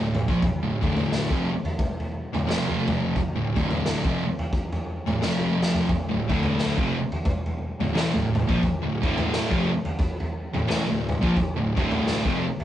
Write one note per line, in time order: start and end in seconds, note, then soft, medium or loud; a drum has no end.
0.00 0.26 D1 medium
0.00 0.22 D2 medium
0.00 0.23 A2 medium
0.15 floor tom medium
0.15 mid tom medium
0.28 0.41 A#1 loud
0.28 0.41 A#2 medium
0.28 0.41 F3 medium
0.28 kick loud
0.42 kick loud
0.42 floor tom medium
0.62 0.81 D1 medium
0.62 0.80 D2 medium
0.62 0.80 A2 medium
0.81 1.27 D1 loud
0.81 1.29 D2 medium
0.81 1.29 A2 loud
0.81 1.30 D3 medium
0.81 kick loud
0.81 floor tom medium
0.97 floor tom medium
0.97 mid tom medium
1.12 snare medium
1.30 1.50 F1 loud
1.30 1.49 F2 medium
1.30 1.50 C3 loud
1.30 kick loud
1.65 floor tom medium
1.79 kick loud
1.79 floor tom medium
1.79 mid tom medium
2.00 floor tom medium
2.33 2.47 D1 medium
2.33 2.46 D2 medium
2.33 2.46 A2 medium
2.33 floor tom medium
2.47 3.12 F1 medium
2.47 3.15 F2 medium
2.47 3.15 C3 medium
2.47 3.15 F3 loud
2.47 snare medium
2.47 mid tom medium
2.69 floor tom medium
2.88 floor tom medium
2.88 mid tom medium
3.16 kick loud
3.16 floor tom medium
3.35 3.55 D1 medium
3.35 3.53 D2 medium
3.35 3.54 A2 medium
3.54 4.01 D1 loud
3.54 4.02 D2 medium
3.54 4.03 A2 medium
3.54 4.03 D3 medium
3.54 kick loud
3.54 floor tom medium
3.71 floor tom medium
3.71 mid tom medium
3.86 snare medium
4.03 4.23 F1 medium
4.03 4.23 F2 medium
4.03 4.23 C3 loud
4.03 kick loud
4.39 floor tom medium
4.53 kick loud
4.53 floor tom medium
4.73 floor tom medium
5.06 5.20 D1 medium
5.06 5.19 D2 medium
5.06 5.20 A2 medium
5.06 floor tom medium
5.19 5.85 F1 medium
5.19 5.88 F2 medium
5.19 5.88 C3 medium
5.19 5.88 F3 loud
5.19 snare medium
5.41 mid tom medium
5.63 snare medium
5.75 floor tom medium
5.89 kick loud
5.89 floor tom medium
6.09 6.28 D1 medium
6.09 6.28 D2 medium
6.09 6.29 A2 medium
6.29 6.75 D1 loud
6.29 6.77 D2 medium
6.29 6.77 A2 medium
6.29 6.77 D3 medium
6.29 kick loud
6.29 floor tom medium
6.43 floor tom medium
6.43 mid tom medium
6.59 snare medium
6.77 6.97 F1 loud
6.77 6.97 F2 medium
6.77 6.97 C3 medium
6.77 kick loud
7.12 floor tom medium
7.25 kick loud
7.25 floor tom medium
7.25 mid tom medium
7.46 floor tom medium
7.80 7.93 D1 medium
7.80 7.93 D2 medium
7.80 7.93 A2 medium
7.80 floor tom medium
7.94 8.13 A1 medium
7.94 8.13 A2 medium
7.94 8.14 E3 loud
7.94 snare medium
7.94 mid tom medium
8.13 8.46 D1 medium
8.13 8.43 D2 medium
8.13 8.43 A2 medium
8.13 floor tom medium
8.35 floor tom medium
8.35 mid tom medium
8.48 8.62 A#1 loud
8.48 8.62 A#2 medium
8.48 8.62 F3 medium
8.48 kick loud
8.63 kick loud
8.63 floor tom medium
8.82 9.02 D1 medium
8.82 9.01 D2 medium
8.82 9.02 A2 medium
9.02 9.48 D1 loud
9.02 9.50 D2 loud
9.02 9.50 A2 medium
9.02 9.51 D3 medium
9.02 kick loud
9.02 floor tom medium
9.18 floor tom medium
9.18 mid tom medium
9.33 snare medium
9.51 9.71 F1 medium
9.51 9.70 F2 medium
9.51 9.71 C3 medium
9.51 kick loud
9.85 floor tom medium
9.99 kick loud
9.99 floor tom loud
10.20 floor tom medium
10.54 10.66 D1 medium
10.54 10.67 D2 medium
10.54 10.66 A2 medium
10.54 floor tom medium
10.67 10.86 A1 loud
10.67 10.87 A2 loud
10.67 10.87 E3 loud
10.67 snare medium
10.67 mid tom medium
10.88 11.20 D1 medium
10.88 11.17 D2 medium
10.88 11.17 A2 medium
11.09 floor tom medium
11.09 mid tom medium
11.21 11.36 A#1 loud
11.21 11.35 A#2 medium
11.21 11.36 F3 loud
11.21 kick loud
11.37 kick loud
11.37 floor tom medium
11.55 11.75 D1 medium
11.55 11.74 D2 medium
11.55 11.75 A2 medium
11.75 12.22 D1 loud
11.75 12.23 D2 medium
11.75 12.24 A2 medium
11.75 12.24 D3 loud
11.75 kick loud
11.75 floor tom medium
11.91 floor tom medium
11.91 mid tom medium
12.07 snare medium
12.24 12.44 F1 medium
12.24 12.43 F2 medium
12.24 12.44 C3 medium
12.24 kick loud
12.60 floor tom medium